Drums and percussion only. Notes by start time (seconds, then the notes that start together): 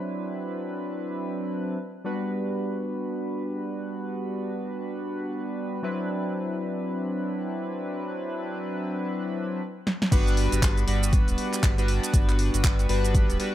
9.87 snare
10.02 snare
10.12 kick, closed hi-hat, crash, shaker
10.27 closed hi-hat, shaker
10.37 open hi-hat
10.52 closed hi-hat, shaker
10.62 kick, clap, closed hi-hat, shaker
10.78 closed hi-hat, shaker
10.88 open hi-hat
11.03 shaker
11.13 kick, closed hi-hat, shaker
11.28 closed hi-hat, shaker
11.38 open hi-hat
11.53 clap, closed hi-hat, shaker
11.63 kick, clap, closed hi-hat, shaker
11.78 closed hi-hat, shaker
11.88 open hi-hat
12.03 closed hi-hat, shaker
12.14 kick, closed hi-hat, shaker
12.29 clap, closed hi-hat, shaker
12.39 open hi-hat
12.54 closed hi-hat, shaker
12.64 kick, clap, closed hi-hat, shaker
12.79 closed hi-hat, shaker
12.89 open hi-hat
13.04 closed hi-hat, shaker
13.14 kick, closed hi-hat, shaker
13.30 closed hi-hat, shaker
13.40 open hi-hat